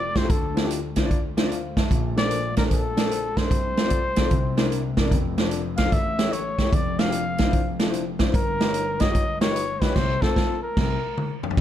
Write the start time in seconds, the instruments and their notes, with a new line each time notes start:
Already playing: grand piano F1 F2, trumpet D5
0.15 grand piano E4 F4 G4 C5, trumpet C5, kick, snare, closed hi-hat
0.21 grand piano E4 F4 G4 A4
0.29 grand piano D2 D3, trumpet A4, kick, closed hi-hat
0.54 grand piano D4 E4 F4 C5, snare, closed hi-hat
0.63 grand piano D4 E4 F4 G4
0.70 closed hi-hat
0.96 grand piano D4 E4 F4 C5, kick, snare, closed hi-hat
1.03 grand piano D4 E4 F4 D5
1.11 kick, closed hi-hat
1.37 grand piano D4 E4 F4 C5, snare, closed hi-hat
1.43 grand piano D4 E4 F4 D5
1.51 grand piano C5 F5, closed hi-hat
1.77 grand piano E5 A5, kick, snare, closed hi-hat
1.91 grand piano A#1 A#2, kick, closed hi-hat
2.16 grand piano D4 A4 A#4 C5, trumpet D5, snare, closed hi-hat
2.24 grand piano D4 A4 A#4 C5
2.31 closed hi-hat
2.57 grand piano D4 A4 A#4 D5, trumpet A#4, kick, snare, closed hi-hat
2.65 grand piano D4 A4 A#4 C5
2.71 trumpet A4, kick, closed hi-hat
2.97 grand piano D4 A4 A#4 D5, snare, closed hi-hat
3.04 grand piano D4 A4 A#4 C5
3.11 closed hi-hat
3.37 grand piano D4 A4 A#4 C5, trumpet C5, kick, snare, closed hi-hat
3.44 grand piano D4 A4 A#4 D5
3.51 grand piano C2 C3, kick, closed hi-hat
3.77 grand piano C4 F4 A4 C5, snare, closed hi-hat
3.85 grand piano C4 F4 A4 D5
3.90 kick, closed hi-hat
4.16 grand piano C4 F4 A4, kick, snare, closed hi-hat
4.21 grand piano D5
4.25 grand piano C4 F4 A4 C5
4.31 grand piano C2 C3, kick, closed hi-hat
4.57 grand piano D4 E4 A#4 C5, snare, closed hi-hat
4.65 grand piano D4 E4 A#4 D5
4.72 closed hi-hat
4.97 grand piano D4 E4 A#4 D5, kick, snare, closed hi-hat
5.05 grand piano D4 E4 A#4 D5
5.11 grand piano F1 F2, kick, closed hi-hat
5.38 grand piano D4 F4 A4 C5, snare, closed hi-hat
5.45 grand piano D4 F4 A4 D5
5.51 closed hi-hat
5.77 grand piano D4 F4 A4 C5, trumpet F5, kick, snare, closed hi-hat
5.85 grand piano D4 F4 A4 D5
5.92 grand piano A1 A2, trumpet E5, kick, closed hi-hat
6.18 grand piano E4 G4 A4 C#5, snare, closed hi-hat
6.26 grand piano E4 G4 A4 C#5
6.33 trumpet C#5, closed hi-hat
6.58 grand piano E4 G4 A4 C#5, kick, snare, closed hi-hat
6.67 grand piano E4 G4 A4 E5
6.73 grand piano F1 F2, trumpet D5, kick, closed hi-hat
6.99 grand piano D4 E4 F4 C5, trumpet F5, snare, closed hi-hat
7.06 grand piano D4 E4 F4 G4
7.12 closed hi-hat
7.38 grand piano D4 E4 F4 C5, kick, snare, closed hi-hat
7.47 grand piano D4 E4 F4 C5
7.53 kick, closed hi-hat
7.80 grand piano D4 E4 F4 A4, snare, closed hi-hat
7.88 grand piano D4 E4 F4 C5
7.93 closed hi-hat
8.19 grand piano D4 E4 F4 C5, kick, snare, closed hi-hat
8.27 grand piano D4 E4 F4 C5
8.34 grand piano G1 G2, trumpet A#4, kick, closed hi-hat
8.60 grand piano D#4 F4 G4 B4, snare, closed hi-hat
8.67 grand piano D#4 F4 G4 C#5
8.74 closed hi-hat
9.00 grand piano D#4 F4 G4 C#5, trumpet D#5, kick, snare, closed hi-hat
9.07 grand piano D#4 F4 G4 C#5
9.15 kick, closed hi-hat
9.41 grand piano D#4 F4 G4 A#4, trumpet C#5, snare, closed hi-hat
9.48 grand piano D#4 F4 G4 B4
9.56 closed hi-hat
9.82 grand piano D#4 F4 G4 C#5, trumpet B4, kick, snare, closed hi-hat
9.89 grand piano D#4 F4 G4 C#5
9.95 grand piano C2 C3, trumpet C5, kick, snare, crash
10.22 grand piano C4 F4 A4 C5, trumpet A4, kick, snare
10.35 grand piano C4 F4 A4, kick, snare
10.63 trumpet A#4
10.77 grand piano C2 C3, kick, snare, crash
11.17 mid tom
11.43 floor tom
11.51 floor tom
11.57 grand piano F2, kick, crash